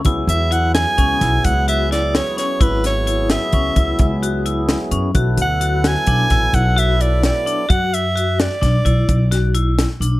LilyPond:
<<
  \new Staff \with { instrumentName = "Soprano saxophone" } { \time 11/8 \key cis \phrygian \tempo 4 = 129 r8 e''8 fis''8 gis''4. fis''8 e''8 d''8 cis''8 cis''8 | b'8 cis''4 e''2 r2 | r8 fis''4 gis''4. fis''8 e''8 d''8 d''4 | fis''8 e''4 d''2 r2 | }
  \new Staff \with { instrumentName = "Vibraphone" } { \time 11/8 \key cis \phrygian e'4 e'4 cis'8 e'4 fis'8 e'4 cis'8 | e'4 e'4 cis'8 e'4 fis'8 e'4 cis'8 | fis'4 fis'4 d'8 e'4 fis'8 e'4 d'8 | fis'4 fis'4 d'8 e'4 fis'8 e'4 d'8 | }
  \new Staff \with { instrumentName = "Tonewheel organ" } { \time 11/8 \key cis \phrygian <fis b e' gis'>1~ <fis b e' gis'>4.~ | <fis b e' gis'>1~ <fis b e' gis'>4. | <fis b e' a'>1~ <fis b e' a'>4. | r1 r4. | }
  \new Staff \with { instrumentName = "Upright bass" } { \clef bass \time 11/8 \key cis \phrygian cis,8 e,4. cis,8 b,,8 cis,2 r8 | gis,,2 cis,8 cis,8 cis,2 fis,8 | b,,8 d,4. b,,8 a,,8 b,,2 r8 | fis,2 b,,8 b,,8 b,,2 b,,8 | }
  \new DrumStaff \with { instrumentName = "Drums" } \drummode { \time 11/8 <hh bd>8 hh8 hh8 <hh sn>8 <hh bd>8 <hh bd sn>8 <hh bd>8 hh8 <hh sn>8 <hh sn>8 <hh sn>8 | <hh bd>8 <hh sn>8 hh8 <hh sn>8 <hh bd>8 <hh bd>8 <hh bd>8 hh8 hh8 <hh sn>8 hh8 | <hh bd>8 hh8 hh8 <hh sn>8 <hh bd>8 <hh bd sn>8 <hh bd>8 hh8 hh8 <hh sn>8 hh8 | <hh bd>8 hh8 hh8 <hh sn>8 <hh bd sn>8 <hh bd>8 <hh bd>8 <hh sn>8 hh8 <hh sn>8 hh8 | }
>>